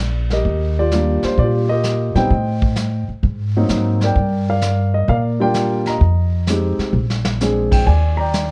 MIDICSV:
0, 0, Header, 1, 5, 480
1, 0, Start_track
1, 0, Key_signature, -3, "major"
1, 0, Tempo, 462963
1, 478, Time_signature, 4, 2, 24, 8
1, 8825, End_track
2, 0, Start_track
2, 0, Title_t, "Grand piano"
2, 0, Program_c, 0, 0
2, 0, Note_on_c, 0, 74, 78
2, 272, Note_off_c, 0, 74, 0
2, 339, Note_on_c, 0, 70, 49
2, 343, Note_on_c, 0, 67, 50
2, 344, Note_on_c, 0, 75, 69
2, 805, Note_off_c, 0, 67, 0
2, 820, Note_on_c, 0, 74, 79
2, 821, Note_on_c, 0, 67, 55
2, 826, Note_on_c, 0, 65, 54
2, 828, Note_off_c, 0, 75, 0
2, 957, Note_off_c, 0, 65, 0
2, 967, Note_on_c, 0, 55, 53
2, 968, Note_on_c, 0, 58, 51
2, 972, Note_on_c, 0, 65, 53
2, 975, Note_on_c, 0, 62, 48
2, 1249, Note_off_c, 0, 70, 0
2, 1295, Note_on_c, 0, 72, 74
2, 1305, Note_off_c, 0, 74, 0
2, 1432, Note_off_c, 0, 72, 0
2, 1439, Note_on_c, 0, 74, 83
2, 1440, Note_off_c, 0, 67, 0
2, 1446, Note_off_c, 0, 65, 0
2, 1456, Note_on_c, 0, 67, 55
2, 1461, Note_on_c, 0, 65, 60
2, 1512, Note_off_c, 0, 74, 0
2, 1703, Note_off_c, 0, 55, 0
2, 1703, Note_off_c, 0, 58, 0
2, 1706, Note_off_c, 0, 62, 0
2, 1756, Note_on_c, 0, 75, 89
2, 1764, Note_off_c, 0, 67, 0
2, 1773, Note_on_c, 0, 70, 55
2, 1779, Note_on_c, 0, 67, 57
2, 2236, Note_on_c, 0, 55, 57
2, 2236, Note_on_c, 0, 79, 89
2, 2240, Note_off_c, 0, 75, 0
2, 2241, Note_on_c, 0, 59, 55
2, 2249, Note_on_c, 0, 63, 57
2, 2254, Note_on_c, 0, 60, 48
2, 2254, Note_on_c, 0, 72, 58
2, 2256, Note_on_c, 0, 75, 59
2, 2359, Note_off_c, 0, 70, 0
2, 2363, Note_off_c, 0, 67, 0
2, 2367, Note_off_c, 0, 65, 0
2, 2377, Note_off_c, 0, 55, 0
2, 2380, Note_off_c, 0, 59, 0
2, 2384, Note_off_c, 0, 63, 0
2, 2386, Note_off_c, 0, 60, 0
2, 3157, Note_off_c, 0, 79, 0
2, 3166, Note_off_c, 0, 72, 0
2, 3167, Note_off_c, 0, 75, 0
2, 3697, Note_on_c, 0, 54, 57
2, 3700, Note_on_c, 0, 58, 53
2, 3700, Note_on_c, 0, 60, 52
2, 3707, Note_on_c, 0, 63, 71
2, 4186, Note_on_c, 0, 74, 59
2, 4188, Note_on_c, 0, 70, 58
2, 4199, Note_on_c, 0, 79, 78
2, 4292, Note_off_c, 0, 54, 0
2, 4294, Note_off_c, 0, 58, 0
2, 4294, Note_off_c, 0, 60, 0
2, 4298, Note_off_c, 0, 63, 0
2, 4644, Note_off_c, 0, 70, 0
2, 4647, Note_off_c, 0, 74, 0
2, 4659, Note_on_c, 0, 70, 54
2, 4662, Note_on_c, 0, 74, 56
2, 4663, Note_on_c, 0, 77, 75
2, 4675, Note_off_c, 0, 79, 0
2, 5124, Note_on_c, 0, 75, 74
2, 5147, Note_off_c, 0, 77, 0
2, 5266, Note_off_c, 0, 75, 0
2, 5273, Note_off_c, 0, 70, 0
2, 5273, Note_off_c, 0, 74, 0
2, 5280, Note_on_c, 0, 77, 79
2, 5288, Note_on_c, 0, 70, 58
2, 5288, Note_on_c, 0, 74, 56
2, 5353, Note_off_c, 0, 77, 0
2, 5598, Note_on_c, 0, 58, 55
2, 5601, Note_on_c, 0, 55, 65
2, 5605, Note_on_c, 0, 62, 60
2, 5610, Note_on_c, 0, 65, 73
2, 5614, Note_on_c, 0, 79, 91
2, 5615, Note_off_c, 0, 70, 0
2, 5615, Note_off_c, 0, 74, 0
2, 5631, Note_on_c, 0, 70, 56
2, 5631, Note_on_c, 0, 74, 59
2, 6089, Note_on_c, 0, 82, 82
2, 6104, Note_off_c, 0, 79, 0
2, 6110, Note_on_c, 0, 75, 62
2, 6204, Note_off_c, 0, 58, 0
2, 6205, Note_off_c, 0, 55, 0
2, 6208, Note_off_c, 0, 62, 0
2, 6210, Note_off_c, 0, 65, 0
2, 6210, Note_off_c, 0, 70, 0
2, 6210, Note_off_c, 0, 74, 0
2, 6727, Note_on_c, 0, 56, 47
2, 6734, Note_on_c, 0, 60, 43
2, 6734, Note_on_c, 0, 63, 46
2, 6741, Note_on_c, 0, 67, 52
2, 7006, Note_off_c, 0, 82, 0
2, 7016, Note_off_c, 0, 75, 0
2, 7203, Note_off_c, 0, 56, 0
2, 7206, Note_off_c, 0, 63, 0
2, 7207, Note_off_c, 0, 60, 0
2, 7210, Note_off_c, 0, 67, 0
2, 7687, Note_on_c, 0, 56, 53
2, 7688, Note_on_c, 0, 60, 48
2, 7693, Note_on_c, 0, 62, 47
2, 7701, Note_on_c, 0, 68, 55
2, 7999, Note_on_c, 0, 79, 82
2, 8155, Note_on_c, 0, 80, 93
2, 8161, Note_off_c, 0, 79, 0
2, 8164, Note_off_c, 0, 56, 0
2, 8164, Note_off_c, 0, 60, 0
2, 8167, Note_off_c, 0, 62, 0
2, 8171, Note_off_c, 0, 68, 0
2, 8171, Note_on_c, 0, 74, 61
2, 8461, Note_off_c, 0, 80, 0
2, 8472, Note_on_c, 0, 82, 86
2, 8482, Note_off_c, 0, 74, 0
2, 8498, Note_on_c, 0, 74, 65
2, 8499, Note_on_c, 0, 79, 58
2, 8825, Note_off_c, 0, 74, 0
2, 8825, Note_off_c, 0, 79, 0
2, 8825, Note_off_c, 0, 82, 0
2, 8825, End_track
3, 0, Start_track
3, 0, Title_t, "Upright bass"
3, 0, Program_c, 1, 32
3, 0, Note_on_c, 1, 34, 73
3, 433, Note_off_c, 1, 34, 0
3, 467, Note_on_c, 1, 39, 70
3, 1236, Note_off_c, 1, 39, 0
3, 1429, Note_on_c, 1, 46, 77
3, 2197, Note_off_c, 1, 46, 0
3, 2229, Note_on_c, 1, 46, 57
3, 2378, Note_off_c, 1, 46, 0
3, 2387, Note_on_c, 1, 45, 73
3, 3156, Note_off_c, 1, 45, 0
3, 3347, Note_on_c, 1, 44, 70
3, 3797, Note_off_c, 1, 44, 0
3, 3824, Note_on_c, 1, 44, 68
3, 4276, Note_off_c, 1, 44, 0
3, 4307, Note_on_c, 1, 43, 75
3, 5231, Note_off_c, 1, 43, 0
3, 5266, Note_on_c, 1, 46, 77
3, 6191, Note_off_c, 1, 46, 0
3, 6227, Note_on_c, 1, 41, 75
3, 6998, Note_off_c, 1, 41, 0
3, 7184, Note_on_c, 1, 34, 76
3, 8111, Note_off_c, 1, 34, 0
3, 8158, Note_on_c, 1, 39, 76
3, 8825, Note_off_c, 1, 39, 0
3, 8825, End_track
4, 0, Start_track
4, 0, Title_t, "Muted upright bass strokes"
4, 1280, Note_on_c, 9, 29, 34
4, 1384, Note_off_c, 9, 29, 0
4, 3196, Note_on_c, 9, 29, 34
4, 3300, Note_off_c, 9, 29, 0
4, 7032, Note_on_c, 9, 29, 39
4, 7136, Note_off_c, 9, 29, 0
4, 8825, End_track
5, 0, Start_track
5, 0, Title_t, "Drums"
5, 314, Note_on_c, 9, 38, 30
5, 417, Note_off_c, 9, 38, 0
5, 462, Note_on_c, 9, 25, 38
5, 467, Note_on_c, 9, 36, 31
5, 571, Note_off_c, 9, 36, 0
5, 945, Note_on_c, 9, 44, 46
5, 950, Note_on_c, 9, 38, 51
5, 1049, Note_off_c, 9, 44, 0
5, 1054, Note_off_c, 9, 38, 0
5, 1271, Note_on_c, 9, 38, 33
5, 1375, Note_off_c, 9, 38, 0
5, 1421, Note_off_c, 9, 25, 0
5, 1421, Note_on_c, 9, 25, 45
5, 1429, Note_on_c, 9, 36, 30
5, 1532, Note_off_c, 9, 36, 0
5, 1902, Note_on_c, 9, 44, 49
5, 1907, Note_on_c, 9, 38, 47
5, 2006, Note_off_c, 9, 44, 0
5, 2011, Note_off_c, 9, 38, 0
5, 2234, Note_on_c, 9, 38, 35
5, 2338, Note_off_c, 9, 38, 0
5, 2387, Note_off_c, 9, 25, 0
5, 2387, Note_on_c, 9, 25, 42
5, 2390, Note_on_c, 9, 36, 30
5, 2493, Note_off_c, 9, 36, 0
5, 2717, Note_on_c, 9, 36, 53
5, 2821, Note_off_c, 9, 36, 0
5, 2859, Note_on_c, 9, 44, 55
5, 2864, Note_on_c, 9, 38, 52
5, 2962, Note_off_c, 9, 44, 0
5, 2967, Note_off_c, 9, 38, 0
5, 3351, Note_off_c, 9, 25, 0
5, 3351, Note_on_c, 9, 25, 41
5, 3351, Note_on_c, 9, 36, 32
5, 3454, Note_off_c, 9, 36, 0
5, 3822, Note_on_c, 9, 44, 48
5, 3827, Note_on_c, 9, 38, 49
5, 3925, Note_off_c, 9, 44, 0
5, 3931, Note_off_c, 9, 38, 0
5, 4156, Note_on_c, 9, 38, 31
5, 4260, Note_off_c, 9, 38, 0
5, 4305, Note_off_c, 9, 25, 0
5, 4305, Note_on_c, 9, 25, 51
5, 4310, Note_on_c, 9, 36, 31
5, 4414, Note_off_c, 9, 36, 0
5, 4785, Note_on_c, 9, 44, 52
5, 4791, Note_on_c, 9, 38, 51
5, 4889, Note_off_c, 9, 44, 0
5, 4894, Note_off_c, 9, 38, 0
5, 5271, Note_on_c, 9, 36, 33
5, 5272, Note_off_c, 9, 25, 0
5, 5272, Note_on_c, 9, 25, 46
5, 5374, Note_off_c, 9, 36, 0
5, 5744, Note_on_c, 9, 44, 46
5, 5750, Note_on_c, 9, 38, 52
5, 5848, Note_off_c, 9, 44, 0
5, 5853, Note_off_c, 9, 38, 0
5, 6074, Note_on_c, 9, 38, 33
5, 6177, Note_off_c, 9, 38, 0
5, 6227, Note_off_c, 9, 25, 0
5, 6227, Note_on_c, 9, 25, 50
5, 6231, Note_on_c, 9, 36, 30
5, 6335, Note_off_c, 9, 36, 0
5, 6706, Note_on_c, 9, 44, 54
5, 6711, Note_on_c, 9, 38, 57
5, 6810, Note_off_c, 9, 44, 0
5, 6815, Note_off_c, 9, 38, 0
5, 7042, Note_on_c, 9, 38, 32
5, 7146, Note_off_c, 9, 38, 0
5, 7361, Note_on_c, 9, 38, 47
5, 7464, Note_off_c, 9, 38, 0
5, 7515, Note_on_c, 9, 38, 73
5, 7618, Note_off_c, 9, 38, 0
5, 7677, Note_on_c, 9, 44, 54
5, 7682, Note_on_c, 9, 38, 46
5, 7780, Note_off_c, 9, 44, 0
5, 7785, Note_off_c, 9, 38, 0
5, 8003, Note_on_c, 9, 36, 58
5, 8005, Note_on_c, 9, 49, 61
5, 8107, Note_off_c, 9, 36, 0
5, 8109, Note_off_c, 9, 49, 0
5, 8158, Note_on_c, 9, 36, 31
5, 8166, Note_off_c, 9, 25, 0
5, 8166, Note_on_c, 9, 25, 50
5, 8262, Note_off_c, 9, 36, 0
5, 8641, Note_on_c, 9, 44, 62
5, 8646, Note_on_c, 9, 38, 55
5, 8744, Note_off_c, 9, 44, 0
5, 8750, Note_off_c, 9, 38, 0
5, 8825, Note_off_c, 9, 25, 0
5, 8825, End_track
0, 0, End_of_file